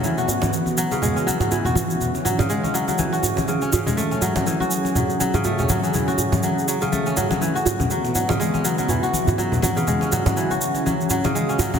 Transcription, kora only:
X:1
M:4/4
L:1/16
Q:"Swing 16ths" 1/4=122
K:Emix
V:1 name="Kora" clef=bass
E, F z4 F, C, G, C F, F, E, F z2 | z2 F, C, G, C F, F, E, F z2 C, C C, G, | A, C F, F, E, F z2 F, z F, C, A, C F, F, | E, F z2 F, z F, C, A, C F, F, E, F z2 |
F, z F, C, G, C F, F, E, F z2 F, z F, C, | G, C F, F, E, F z2 F, z F, C, G, C F, F, |]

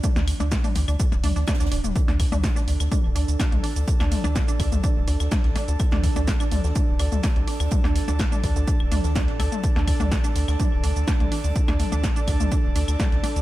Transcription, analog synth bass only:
X:1
M:4/4
L:1/16
Q:1/4=125
K:Cdor
V:1 name="Analog synth bass" clef=bass
z D,, z D,, z2 D,, D,, z D,,, D,, D,, z D,, D,,, D,,, | z D,, z D,, z2 D,, D,, z D,,, D,, D,, z C,, z D,, | z D,, z D,, z2 D,, D,, z D,,, D,, D,, z C,, z D,, | z D,, z D,, z2 D,, D,, z D,,, D,, D,, z C,, z D,, |
z D,, z D,, z2 D,, D,, z D,,, D,, D,,2 A,,, D,, z | z D,, z D,, z2 D,, D,, z D,,, D,, D,, z C,, z D,, | z D,, z D,, z2 D,, D,, z D,,, D,, D,, z C,, z D,, |]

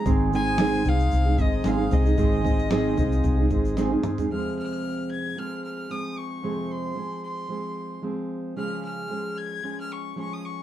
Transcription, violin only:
X:1
M:4/4
L:1/16
Q:"Swing 16ths" 1/4=113
K:Fphr
V:1 name="Violin"
z2 a4 f4 e2 f2 e2- | e12 z4 | f'2 f'4 a'2 f'2 f'2 e'2 d'2- | d'2 c'4 c'6 z4 |
f'2 f'4 a'3 f' d'2 d' e' d'2 |]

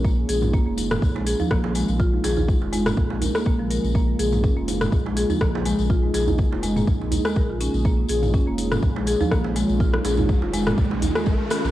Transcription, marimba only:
X:1
M:4/4
L:1/16
Q:"Swing 16ths" 1/4=123
K:Db
V:1 name="Marimba"
B, z A z B, B, z3 A, A F, B, z A, z | F z A z2 F A, B, z2 B B, B, F, B z | B, z A z D B, z3 A, A F, B, z A, z | F z A z2 F A, B, z3 A, B F D z |
B, z A z D B, z3 A, A F, B, z A, z | F z A z2 F A, B, z3 A, B F D z |]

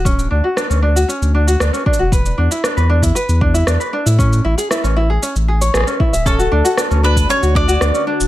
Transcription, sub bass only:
X:1
M:4/4
L:1/16
Q:1/4=116
K:Dlyd
V:1 name="Sub bass" clef=bass
D,,,2 D,, z2 D,,3 z D,,3 D,, z2 E,,,- | E,,,2 E,, z2 E,,3 z E,,3 E,, z2 A,,- | A,,2 A,,, z2 A,,,3 z A,,,3 A,,, z2 D,,,- | D,,,2 D,, z2 D,,3 z D,,3 D,, z2 D,,, |]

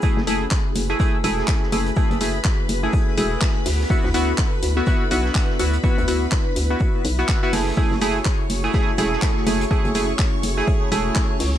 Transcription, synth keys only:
X:1
M:4/4
L:1/16
Q:"Swing 16ths" 1/4=124
K:F#m
V:1 name="Synth keys"
[A,EG] z [A,EG] z4 [A,EG] [A,EG] z [A,EG]4 [A,EG] z | [A,EG]2 [A,EG] z4 [A,EG]3 [A,EG]4 z2 | [B,EF] z [B,EF] z4 [B,EF] [B,EF] z [B,EF]4 [B,EF] z | [B,EF]2 [B,EF] z4 [B,EF]3 z [B,EF]2 [B,EF] [A,EG]2 |
[A,EG] z [A,EG] z4 [A,EG] [A,EG] z [A,EG]4 [A,EG] z | [A,EG]2 [A,EG] z4 [A,EG]3 [A,EG]4 z2 |]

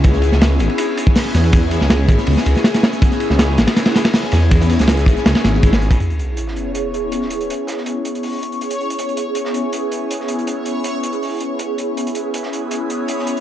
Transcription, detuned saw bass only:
X:1
M:4/4
L:1/16
Q:1/4=161
K:C#m
V:1 name="Detuned saw bass" clef=bass
C,,3 C,,3 G,,, z6 z E,,2- | E,,3 C,,3 G,,, z C,, z C,, z4 z | z3 C,,3 G,,, z6 z E,,2- | E,,3 C,,3 G,,, z C,, z G,,,2 G,,,4 |
z16 | z16 | z16 | z16 |
z16 |]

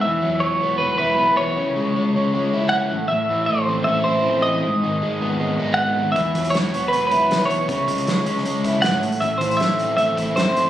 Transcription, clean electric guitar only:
X:1
M:4/4
L:1/8
Q:1/4=157
K:E
V:1 name="Clean electric guitar"
e2 c2 B B2 c- | c4- c z f2 | e2 =c2 e c2 d- | d4- d z f2 |
e2 c2 B B2 c- | c4- c z f2 | e =c e2 e2 c2 |]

